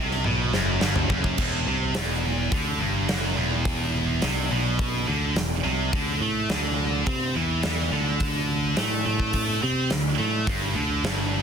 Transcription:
Already playing: C2 C3
0.11 snare
0.24 B1 B2, high tom
0.53 F#1 F#2, snare
0.81 G1 G2, snare
0.96 mid tom
1.09 F#1 F#2, kick
1.24 kick
1.38 E1 E2, kick, crash
1.66 C2 C3
1.94 E1 E2, snare, open hi-hat
2.51 D2 D3, kick, open hi-hat
2.80 G1 G2
3.09 F#2, snare, open hi-hat
3.37 E1 E2
3.65 kick, open hi-hat
4.22 C2 C3, snare, open hi-hat
4.51 B1 B2
4.79 kick, open hi-hat
5.08 D2 D3
5.36 E1 E2, snare, open hi-hat
5.64 C2 C3
5.93 D2 D3, kick, open hi-hat
6.21 A2 A3
6.49 D2 D3, snare, open hi-hat
7.06 C3 C4, kick, open hi-hat
7.35 E2 E3
7.63 E2 E3, snare, open hi-hat
7.91 D2 D3
8.20 kick, open hi-hat
8.77 A2 A3, snare, open hi-hat
9.06 A2 A3
9.20 kick
9.33 kick, open hi-hat
9.63 C3 C4
9.90 D2 D3, snare, open hi-hat
10.19 A2 A3
10.47 G1 G2, kick, open hi-hat
10.74 D2 D3
11.04 G1 G2, snare, open hi-hat

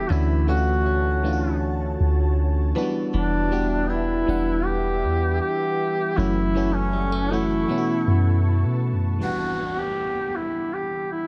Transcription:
Already playing: E3 G3 B3 D4 F#4 G4
0.09 D2 D3 E3 A3 C#4 D4 E4 F#4 C#5 A5
0.47 E3 A3 C#4 D4 F4 F#4
0.57 F#4
0.86 C#4
1.23 E3 A3 C#4 D4 F4
1.33 F#4
2.00 D2
2.75 E3 F#3 B3 D4 E4 F#4 B4 E5
2.82 G3
3.14 E1 E3 D4
3.51 E3 G3 B3 D4 F#4 G4
3.90 D4 E4
4.27 E1 E3 G3 B3 D4 F#5
4.66 G4
5.04 E2
5.41 G4
6.16 F#1 F#2 E3 F#3 A3 C#4 E4 F#4 A4 F#5 C#6
6.54 E3 F#3 A3 C#4 F#4
6.74 C#4
6.93 G3
7.12 A3
7.30 E3 F#3 A3 C#4 E4 F#4
7.68 B2 E3 A3 B3 C#4 E4 B4 A5
7.78 F#4
8.07 F#2
8.64 B2
8.92 F#2
9.19 E3 G3 B3 F#4, downlifter
9.23 D4 F#5
9.79 G4
10.36 E4
10.74 G4
11.12 E4

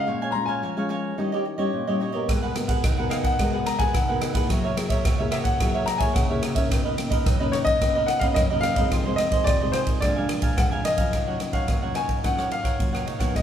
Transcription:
Already playing: G#3 C#4 F4 F5
0.07 A#2 A#4 C#5 F5 G#5
0.22 C#5 F5 G#5
0.31 G#3 A#5 C6, muted cavaquinho stroke
0.35 C#4 F4
0.46 C#5 F5 G#5
0.62 F3 A#4 C#5 F5 G#5
0.77 G#3 C#4 F4 C#5 F5 G#5
0.89 A#4 C#5 F5 G#5
1.18 D#3 G3 C#4 D#4 E4 G4 C#5 D#5
1.32 G4 C#5 D#5
1.45 muted cavaquinho stroke
1.58 G3 C#4 E4 G4 C#5 D#5
1.73 A#2
1.87 G3 C#4 E4 G4 C#5 D#5
2.00 D#4 G4 C#5 D#5
2.13 B3 F#4 G4 A#4 C#5 D#5
2.28 G#3 D#4 G#4 B4 F#5, kick, cross-stick, ride
2.43 G#4 B4 F#5
2.56 B3 F#4 A#4, muted cavaquinho stroke, cross-stick, ride
2.68 G#4 B4 F#5, kick, ride
2.84 D#3 D#4 G#4 B4 F#5, kick, cross-stick, ride
2.97 B3 F#4 G#4 A#4 B4 F#5
3.10 D#4 G#4 B4 F5 F#5, cross-stick, ride
3.24 F#5, kick, ride
3.39 G#3 B3 D#4 F#4 G#4 A#4 B4 F#5, kick, cross-stick, ride
3.53 G#4 B4 F#5
3.66 A#5, muted cavaquinho stroke, cross-stick, ride
3.79 B3 F#4 G#4 A#4 B4 F#5 G#5, kick, ride
3.94 D#3 F#5, kick, cross-stick, ride
4.08 B3 F#4 G#4 A#4 B4 F#5
4.21 D#4 G#4 B4 F#5, cross-stick, ride
4.33 A#3 E4 G#4 B4 F#5, kick, ride
4.49 F#3 F#4 A#4 C#5 E5, kick, cross-stick, ride
4.64 A#4 C#5 E5
4.76 A#3 E4 G#4, muted cavaquinho stroke, cross-stick, ride
4.89 A#4 C#5 E5, kick, ride
5.04 C#3 F#4 A#4 C#5 E5, kick, cross-stick, ride
5.19 A#3 E4 G#4 A#4 C#5 E5
5.31 F#4 A#4 C#5 E5, cross-stick, ride
5.44 F#5, kick, ride
5.60 F#3 A#3 E4 F#4 G#4 A#4 C#5 E5, kick, cross-stick, ride
5.74 A#4 C#5 E5
5.86 A#5, muted cavaquinho stroke, cross-stick, ride
5.98 A#3 E4 G#4 A#4 C#5 E5 G#5, kick, ride
6.14 C#3 F#5, kick, cross-stick, ride
6.29 A#3 E4 G#4 A#4 C#5 E5
6.42 F#4 A#4 C#5 E5, cross-stick, ride
6.55 D#3 A#3 C#4 A#4 C#5 E5, kick, ride
6.70 B2 D#4 A#4 B4 D#5, kick, cross-stick, ride
6.84 A#4 B4 D#5
6.97 D#3 A#3 C#4, muted cavaquinho stroke, cross-stick, ride
7.10 A#4 B4 D#5, kick, ride
7.26 F#2 D#4 A#4 B4 D#5, kick, cross-stick, ride
7.39 D#3 A#3 C#4 A#4 B4 D#5
7.52 D#4 A#4 B4 C#5 D#5, cross-stick, ride
7.65 D#5, kick, ride
7.81 B2 D#3 A#3 C#4 D#4 A#4 B4 D#5, kick, cross-stick, ride
7.95 A#4 B4 D#5
8.06 F#5, muted cavaquinho stroke, cross-stick, ride
8.19 D#3 A#3 C#4 A#4 B4 D#5 F5, kick, ride
8.34 F#2 D#5, kick, cross-stick, ride
8.50 D#3 A#3 C#4 A#4 B4 D#5
8.61 D#4 A#4 B4 F5, cross-stick, ride
8.65 D#5
8.76 D#3 G#3 C4 A#4 B4 D#5, kick, ride
8.91 F2 F4 G#4 C5 D#5, kick, cross-stick, ride
9.05 D#3 G#3 C4 G#4 C5 D#5
9.16 D#3 G#3 D#5, muted cavaquinho stroke, cross-stick, ride
9.31 G#4 C5 D#5, kick, ride
9.44 C3 F4 G#4 C5 D5 D#5, kick, cross-stick, ride
9.60 D#3 G#3 C4 G#4 C5 D#5
9.72 F4 G#4 C5 D#5, cross-stick, ride
9.87 kick, ride
10.00 A#2 F3 G#3 D4 A#4 D5 F5 G#5, kick, cross-stick, ride
10.16 F3 G#3 D4 A#4 F5 G#5
10.29 muted cavaquinho stroke, cross-stick, ride
10.42 A#4 F5 G#5, kick, ride
10.57 F2 F3 G#3 D4 F#5, kick, cross-stick, ride
10.71 A#4 F5 G#5
10.84 D4 A#4 D#5 F5 G#5, cross-stick, ride
10.97 F#3 C#4 F4 A#4 F5 G#5, kick, ride
11.12 D#3 D#4 A#4 C#5 F#5, kick, cross-stick, ride
11.27 F#3 C#4 F4 A#4 C#5 F#5
11.40 F#3 C#4 F4, muted cavaquinho stroke, cross-stick, ride
11.53 A#4 C#5 F5 F#5, kick, ride
11.68 A#2 D#4 A#4 C#5 F#5, kick, cross-stick, ride
11.82 F#3 C#4 F4 A#4 C#5 F#5
11.94 D#4 A#4 C#5 F#5 G#5, cross-stick, ride
12.09 kick, ride
12.23 D#3 F#3 C#4 D#4 F4 A#4 C#5 F#5, kick, cross-stick, ride
12.37 A#4 C#5 F#5, cross-stick
12.50 F5, muted cavaquinho stroke, ride
12.63 A#4 C#5 F#5, kick, cross-stick, ride
12.79 A#2 F#3 C#4 F4, kick, ride
12.93 A#4 C#5 F#5, cross-stick
13.06 D#4 A#4 C#5 F#5, ride
13.19 F#3 B3 D#4 A#4 C#5 F#5, kick, cross-stick, ride
13.34 G#2 F#4 G#4 B4 D#5 F#5, kick, cross-stick, ride

